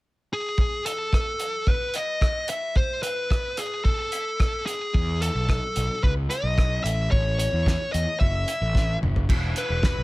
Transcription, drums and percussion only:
0.58 kick
0.86 closed hi-hat
1.13 kick, cross-stick
1.40 closed hi-hat
1.67 kick
1.94 closed hi-hat
2.21 kick, cross-stick
2.48 closed hi-hat
2.76 kick
3.03 closed hi-hat
3.30 kick, cross-stick
3.57 closed hi-hat
3.85 kick
4.12 closed hi-hat
4.40 kick, cross-stick
4.67 closed hi-hat
4.94 kick
5.22 closed hi-hat
5.49 kick, cross-stick
5.76 closed hi-hat
6.03 kick
6.31 closed hi-hat
6.58 kick, cross-stick
6.86 closed hi-hat
7.12 kick
7.39 closed hi-hat
7.66 kick, snare
7.94 closed hi-hat
8.21 kick
8.48 closed hi-hat
8.75 kick, snare
9.03 mid tom
9.16 floor tom
9.29 kick, crash
9.56 closed hi-hat
9.83 kick, snare

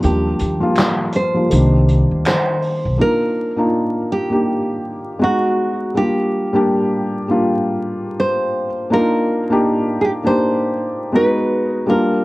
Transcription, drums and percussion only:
0.02 closed hi-hat
0.39 closed hi-hat
0.76 finger snap, snare, clap, closed hi-hat
1.12 closed hi-hat
1.51 closed hi-hat
1.88 closed hi-hat
2.25 finger snap, snare, clap, closed hi-hat
2.62 open hi-hat

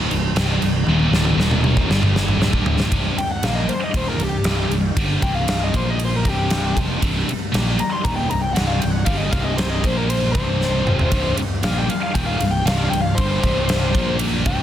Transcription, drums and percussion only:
0.11 crash
0.36 snare, crash
0.62 crash
0.87 high tom
1.00 high tom
1.13 snare
1.25 high tom
1.40 snare
1.51 mid tom
1.64 mid tom
1.77 kick
1.91 snare
2.03 mid tom
2.16 snare
2.29 mid tom
2.42 snare
2.53 kick
2.66 floor tom
2.80 snare
2.92 kick, ride
3.18 ride
3.43 snare, ride
3.69 ride
3.94 kick, ride
4.20 ride
4.44 snare, ride
4.71 ride
4.97 kick, ride
5.22 kick, ride
5.48 snare, ride
5.74 kick, ride
6.00 ride
6.25 kick, ride
6.50 snare, ride
6.77 kick, ride
7.02 kick, ride
7.29 ride
7.54 snare, ride
7.79 ride
8.05 kick, ride
8.31 ride
8.56 snare, ride
8.82 ride
9.06 kick, ride
9.33 kick, ride
9.58 snare, ride
9.84 kick, ride
10.10 ride
10.35 kick, ride
10.61 snare
10.87 mid tom
10.99 floor tom
11.12 kick, ride
11.37 ride
11.63 snare, ride
11.90 ride
12.15 kick, ride
12.40 ride
12.67 snare, ride
12.93 ride
13.18 kick, ride
13.43 kick, ride
13.69 snare, ride
13.95 kick, ride
14.19 ride
14.46 kick, ride

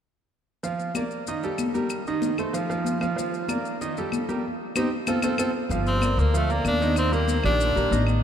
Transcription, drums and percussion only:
0.64 high conga, maracas
0.79 high conga, maracas
0.95 high conga, claves, maracas
1.11 high conga, maracas
1.27 high conga, maracas
1.43 high conga, maracas
1.58 high conga, claves, maracas
1.74 high conga, maracas
1.89 high conga, claves, maracas
2.06 high conga, maracas
2.22 high conga, maracas
2.38 high conga, claves, maracas
2.53 high conga, maracas
2.69 high conga, maracas
2.84 high conga, maracas
3.00 high conga, claves, maracas
3.17 high conga, maracas
3.33 high conga, maracas
3.48 high conga, claves, maracas
3.65 high conga, maracas
3.80 high conga, maracas
3.97 high conga, maracas
4.12 high conga, claves, maracas
4.29 high conga, maracas
4.76 high conga, claves, maracas
5.07 high conga, claves, maracas
5.22 high conga, claves, maracas
5.38 high conga, claves, maracas
5.70 high conga, maracas
5.86 high conga, maracas
6.01 high conga, claves, maracas
6.18 high conga, maracas
6.34 high conga, maracas
6.49 high conga, maracas
6.65 high conga, claves, maracas
6.80 high conga, maracas
6.96 high conga, claves, maracas
7.13 high conga, maracas
7.28 high conga, maracas
7.44 high conga, claves, maracas
7.60 high conga, maracas
7.77 high conga, maracas
7.92 high conga, maracas
8.07 high conga, claves, maracas

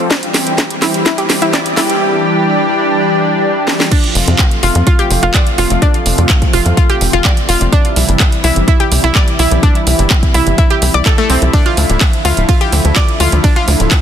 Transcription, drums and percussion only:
0.11 kick, snare, closed hi-hat
0.23 closed hi-hat
0.34 snare, open hi-hat
0.47 closed hi-hat
0.58 kick, snare, closed hi-hat
0.70 closed hi-hat
0.82 snare, open hi-hat
0.94 closed hi-hat
1.06 kick, snare, closed hi-hat
1.18 closed hi-hat
1.30 snare, open hi-hat
1.42 closed hi-hat
1.53 kick, snare, closed hi-hat
1.66 closed hi-hat
1.77 snare, open hi-hat
1.90 closed hi-hat
3.68 snare
3.80 snare
3.91 kick, closed hi-hat, crash
4.04 closed hi-hat
4.15 open hi-hat
4.28 closed hi-hat
4.39 kick, clap, closed hi-hat
4.51 closed hi-hat
4.63 open hi-hat
4.75 closed hi-hat
4.87 kick, closed hi-hat
4.99 closed hi-hat
5.11 open hi-hat
5.23 closed hi-hat
5.34 kick, clap, closed hi-hat
5.47 closed hi-hat
5.58 open hi-hat
5.70 closed hi-hat
5.82 kick, closed hi-hat
5.94 closed hi-hat
6.06 open hi-hat
6.18 closed hi-hat
6.29 kick, clap, closed hi-hat
6.42 kick, closed hi-hat
6.53 open hi-hat
6.66 closed hi-hat
6.77 kick, closed hi-hat
6.90 closed hi-hat
7.01 open hi-hat
7.13 closed hi-hat
7.25 kick, clap, closed hi-hat
7.37 closed hi-hat
7.49 open hi-hat
7.61 closed hi-hat
7.72 kick, closed hi-hat
7.85 closed hi-hat
7.96 open hi-hat
8.09 closed hi-hat
8.20 kick, clap, closed hi-hat
8.32 closed hi-hat
8.44 open hi-hat
8.56 closed hi-hat
8.68 kick, closed hi-hat
8.80 closed hi-hat
8.92 open hi-hat
9.04 closed hi-hat
9.15 kick, clap, closed hi-hat
9.28 closed hi-hat
9.39 open hi-hat
9.51 closed hi-hat
9.63 kick, closed hi-hat
9.75 closed hi-hat
9.87 open hi-hat
9.99 closed hi-hat
10.10 kick, clap, closed hi-hat
10.23 kick, closed hi-hat
10.34 open hi-hat
10.47 closed hi-hat
10.58 kick, closed hi-hat
10.70 closed hi-hat
10.82 open hi-hat
10.94 closed hi-hat
11.05 kick, clap, closed hi-hat
11.18 closed hi-hat
11.30 open hi-hat
11.42 closed hi-hat
11.53 kick, closed hi-hat, ride
11.66 closed hi-hat
11.77 open hi-hat
11.90 closed hi-hat
12.01 kick, clap, closed hi-hat, ride
12.13 closed hi-hat
12.25 open hi-hat
12.37 closed hi-hat
12.49 kick, closed hi-hat, ride
12.61 closed hi-hat
12.72 open hi-hat
12.85 closed hi-hat
12.96 kick, clap, closed hi-hat, ride
13.08 closed hi-hat
13.20 open hi-hat
13.32 closed hi-hat
13.44 kick, closed hi-hat, ride
13.56 closed hi-hat
13.68 open hi-hat
13.80 closed hi-hat
13.91 kick, clap, closed hi-hat, ride

